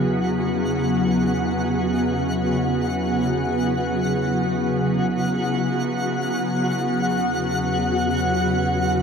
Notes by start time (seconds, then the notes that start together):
Already playing: E2 C#3 F#3 B3 E4 F#4 G#4 F#5
6.01 E2